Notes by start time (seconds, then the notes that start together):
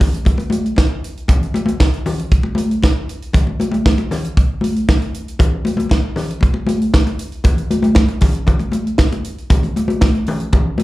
0.00 kick, snare, open hi-hat, low conga
0.14 closed hi-hat
0.25 kick, closed hi-hat, muted conga
0.38 closed hi-hat, muted conga
0.50 closed hi-hat, high conga
0.66 closed hi-hat
0.76 kick, snare, muted conga
1.04 closed hi-hat
1.17 closed hi-hat
1.28 kick, closed hi-hat, muted conga, low conga
1.43 closed hi-hat
1.54 closed hi-hat, high conga
1.66 closed hi-hat, high conga
1.80 kick, snare
1.94 closed hi-hat
2.06 open hi-hat, low conga
2.19 closed hi-hat
2.31 kick, closed hi-hat
2.43 muted conga
2.55 closed hi-hat, high conga
2.71 closed hi-hat
2.82 kick, snare, muted conga
3.09 closed hi-hat
3.22 closed hi-hat
3.33 kick, closed hi-hat, low conga
3.47 muted conga
3.60 closed hi-hat, high conga
3.71 closed hi-hat, high conga
3.86 kick, snare
3.98 closed hi-hat, muted conga
4.11 snare, open hi-hat, low conga
4.24 closed hi-hat
4.37 kick, closed hi-hat
4.61 closed hi-hat, high conga
4.76 closed hi-hat
4.89 kick, snare
5.02 closed hi-hat
5.14 closed hi-hat
5.28 closed hi-hat
5.39 kick, closed hi-hat, muted conga, low conga
5.65 closed hi-hat, high conga
5.77 closed hi-hat, high conga
5.89 kick, snare, muted conga
6.16 snare, open hi-hat, low conga
6.30 closed hi-hat
6.41 kick, closed hi-hat, muted conga
6.54 muted conga
6.67 closed hi-hat, high conga
6.82 closed hi-hat
6.94 kick, snare
7.07 closed hi-hat, muted conga
7.19 closed hi-hat
7.32 closed hi-hat
7.44 kick, closed hi-hat, muted conga, low conga
7.58 closed hi-hat
7.71 closed hi-hat, high conga
7.82 closed hi-hat, high conga
7.95 kick, snare
8.08 closed hi-hat, muted conga
8.21 kick, snare, open hi-hat, low conga
8.35 closed hi-hat
8.47 kick, closed hi-hat, muted conga, low conga
8.59 closed hi-hat, muted conga
8.72 closed hi-hat, high conga
8.87 closed hi-hat
8.98 kick, snare
9.12 closed hi-hat, muted conga
9.24 closed hi-hat
9.38 closed hi-hat
9.50 kick, closed hi-hat, muted conga, low conga
9.63 closed hi-hat, muted conga
9.76 closed hi-hat, high conga
9.88 closed hi-hat, high conga
10.01 kick, snare, muted conga, high conga
10.15 closed hi-hat
10.26 open hi-hat, low conga
10.40 closed hi-hat
10.52 kick, closed hi-hat, muted conga, low conga
10.78 closed hi-hat, high conga